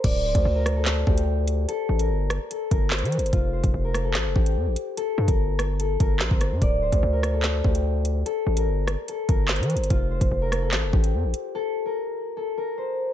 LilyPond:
<<
  \new Staff \with { instrumentName = "Harp" } { \time 4/4 \key d \minor \tempo 4 = 146 d''8 c''8. bes'8 a'16 r8 g'4. | a'8. bes'4~ bes'16 a'8 bes'8 c''4 | f'8 c''8. bes'8 a'16 r8 g'4. | a'8. bes'4~ bes'16 a'8 bes'8 c''4 |
d''8 c''8. bes'8 a'16 r8 g'4. | a'8. bes'4~ bes'16 a'8 bes'8 c''4 | f'8 c''8. bes'8 a'16 r8 g'4. | a'8. bes'4~ bes'16 a'8 bes'8 c''4 | }
  \new Staff \with { instrumentName = "808-style bass" } { \clef bass \time 4/4 \key d \minor d,,8. d,16 d,4. d,4. | r8 a,,8 g,,8. r8. g,,8. e16. g,,16. | f,,8. f,,16 f,,4 a,,16 f,,16 a,,8 f,16 a,,16 r8 | r8 g,16 g,,4.~ g,,16 g,,8 bes,,16 g,,8 g,16 |
d,,8. d,16 d,4. d,4. | r8 a,,8 g,,8. r8. g,,8. e16. g,,16. | f,,8. f,,16 f,,4 a,,16 f,,16 a,,8 f,16 a,,16 r8 | r1 | }
  \new DrumStaff \with { instrumentName = "Drums" } \drummode { \time 4/4 <cymc hh bd>8. <hh bd>16 r8 <hh ss>8 <hc hh sn>8 bd16 hh16 r8 hh8 | hh8. hh16 r8 <hh ss>8 hh8 <hh bd>8 \tuplet 3/2 { <hc hh sn>16 hh16 hh16 hh16 hh16 hh16 } | <hh bd>8. <hh bd>16 r8 <hh ss>8 <hc hh sn>8 bd16 hh16 r8 hh8 | hh8. <hh bd>16 r8 <hh ss>8 hh8 <hh bd>8 <hc hh sn>16 bd16 <hh ss>8 |
<hh bd>8. <hh bd>16 r8 <hh ss>8 <hc hh sn>8 bd16 hh16 r8 hh8 | hh8. hh16 r8 <hh ss>8 hh8 <hh bd>8 \tuplet 3/2 { <hc hh sn>16 hh16 hh16 hh16 hh16 hh16 } | <hh bd>8. <hh bd>16 r8 <hh ss>8 <hc hh sn>8 bd16 hh16 r8 hh8 | r4 r4 r4 r4 | }
>>